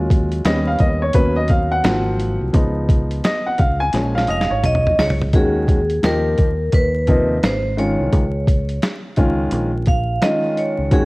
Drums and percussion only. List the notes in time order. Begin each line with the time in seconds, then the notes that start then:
0.10 kick, closed hi-hat
0.32 closed hi-hat
0.45 snare, closed hi-hat
0.79 kick, closed hi-hat
1.13 kick, closed hi-hat
1.48 kick, closed hi-hat
1.84 snare, closed hi-hat
2.20 closed hi-hat
2.54 kick, closed hi-hat
2.89 kick, closed hi-hat
3.11 closed hi-hat
3.24 snare, closed hi-hat
3.58 kick, closed hi-hat
3.93 snare, closed hi-hat
4.18 snare
4.27 closed hi-hat
4.41 snare
4.64 closed hi-hat, mid tom
4.75 mid tom
4.87 mid tom
4.99 snare, open hi-hat
5.10 floor tom
5.22 floor tom
5.33 kick, closed hi-hat
5.68 kick, closed hi-hat
5.90 closed hi-hat
6.03 snare, closed hi-hat
6.38 kick, closed hi-hat
6.72 kick, closed hi-hat
7.07 kick, closed hi-hat
7.43 snare, closed hi-hat
7.78 closed hi-hat
8.12 kick, closed hi-hat
8.47 kick, closed hi-hat
8.69 closed hi-hat
8.82 snare, closed hi-hat
9.16 kick, closed hi-hat
9.51 closed hi-hat
9.86 kick, closed hi-hat
10.22 snare, closed hi-hat
10.57 closed hi-hat
10.91 kick, closed hi-hat